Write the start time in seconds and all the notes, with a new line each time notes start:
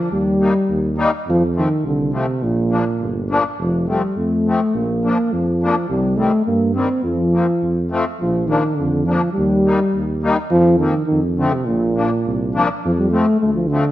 Already playing: F3
0.11 D#2 G3
0.40 G3 A#3 D#4
0.69 D#2
0.97 G3 A#3 D#4
1.27 F2 F3
1.55 D#3 F3 A3 C4
1.84 C2 D3
2.12 C3 F3 A3 C4
2.42 A#1 A#2
2.71 F3 A#3 D4
3.00 G1
3.30 F3 A#3 D4
3.59 F1 F3
3.89 F3 G3 A3 C4
4.17 F2 A3
4.48 F3 A3 C4
4.75 A#1 A#3
5.05 F3 A#3 D4
5.32 F2 F3
5.63 F3 A#3 D4
5.89 C2 G3
6.17 D#3 G3 A3 C4
6.46 G2 A#3
6.75 D#3 G3 C4
7.04 F2 F3
7.33 F3 A#3 C4
7.62 F2
7.91 F3 A3 C4
8.19 A#1 F3
8.47 D#3 F3 A#3 D4
8.75 D3
8.79 F2
9.05 F3 A#3 D4
9.33 G3
9.37 D#2
9.66 G3 A#3 D#4
9.94 D#2
10.23 G3 A#3 D#4
10.51 F2 F3
10.79 D#3 F3 A#3 C4
11.06 D#3
11.11 F2
11.37 D3 F3 A3 C4
11.52 C3
11.65 A#1 A#2
11.96 F3 A#3 D4
12.27 C2
12.55 F3 A#3 D4
12.84 F2 F3
12.99 G3
13.11 F3 A3 C4
13.40 D2 A3
13.54 F3
13.68 D3
13.72 F3 A3 C4